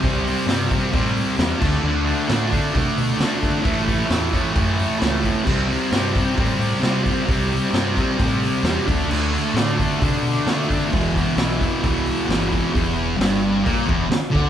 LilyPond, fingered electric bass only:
\new Staff \with { instrumentName = "Fingered electric bass" } { \clef bass \time 4/4 \key e \minor \tempo 4 = 132 c,4 g,4 a,4 e,8 d,8 | d,4 a,4 c8 b,8 d4 | a,,4 e,4 fis,4 cis,4 | c,4 g,4 a,8 a,8 c4 |
c,4 g,4 a,4 e,8 d,8 | d,4 a,4 c8 b,8 d4 | e,,4 b,,4 c,4 g,,4 | e,,4 g,,4 ais,,8 e,,8 r8 d,8 | }